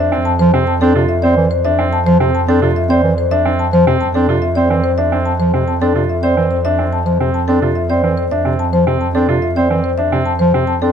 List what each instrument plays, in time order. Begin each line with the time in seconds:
Already playing: double bass F2, marimba E5
0.00 grand piano D4
0.12 grand piano C4
0.25 marimba A5
0.39 bass clarinet F3, marimba C5
0.54 bass clarinet C3, grand piano C4
0.67 marimba A5
0.81 bass clarinet C4, grand piano D4, marimba A4
0.95 bass clarinet C3, grand piano F4
1.09 marimba E5
1.22 bass clarinet C4, grand piano C5, marimba D5
1.37 bass clarinet E3
1.51 marimba C5
1.65 grand piano D4, marimba E5
1.79 grand piano C4
1.93 marimba A5
2.06 bass clarinet F3, marimba C5
2.20 bass clarinet C3, grand piano C4
2.35 marimba A5
2.48 bass clarinet C4, grand piano D4, marimba A4
2.62 bass clarinet C3, grand piano F4
2.76 marimba E5
2.90 bass clarinet C4, grand piano C5, marimba D5
3.04 bass clarinet E3
3.18 marimba C5
3.31 grand piano D4, marimba E5
3.45 grand piano C4
3.59 marimba A5
3.73 bass clarinet F3, marimba C5
3.87 bass clarinet C3, grand piano C4
4.01 marimba A5
4.14 bass clarinet C4, grand piano D4, marimba A4
4.29 bass clarinet C3, grand piano F4
4.42 marimba E5
4.55 bass clarinet C4, grand piano C5, marimba D5
4.70 bass clarinet E3, grand piano C4
4.84 marimba C5
4.98 grand piano D4, marimba E5
5.12 grand piano C4
5.25 marimba A5
5.40 bass clarinet F3, marimba C5
5.54 bass clarinet C3, grand piano C4
5.68 marimba A5
5.81 bass clarinet C4, grand piano D4, marimba A4
5.95 bass clarinet C3, grand piano F4
6.09 marimba E5
6.23 bass clarinet C4, grand piano C5, marimba D5
6.37 bass clarinet E3, grand piano C4
6.51 marimba C5
6.65 grand piano D4, marimba E5
6.79 grand piano C4
6.93 marimba A5
7.06 bass clarinet F3, marimba C5
7.20 bass clarinet C3, grand piano C4
7.34 marimba A5
7.48 bass clarinet C4, grand piano D4, marimba A4
7.62 bass clarinet C3, grand piano F4
7.75 marimba E5
7.90 bass clarinet C4, grand piano C5, marimba D5
8.03 bass clarinet E3, grand piano C4
8.18 marimba C5
8.31 grand piano D4, marimba E5
8.45 bass clarinet C3, grand piano C4
8.59 marimba A5
8.73 bass clarinet F3, marimba C5
8.87 bass clarinet C3, grand piano C4
9.01 marimba A5
9.15 bass clarinet C4, grand piano D4, marimba A4
9.29 bass clarinet C3, grand piano F4
9.42 marimba E5
9.56 bass clarinet C4, grand piano C5, marimba D5
9.71 bass clarinet E3, grand piano C4
9.84 marimba C5
9.98 grand piano D4, marimba E5
10.12 bass clarinet C3, grand piano C4
10.26 marimba A5
10.39 bass clarinet F3, marimba C5
10.54 bass clarinet C3, grand piano C4
10.67 marimba A5
10.82 bass clarinet C4, grand piano D4, marimba A4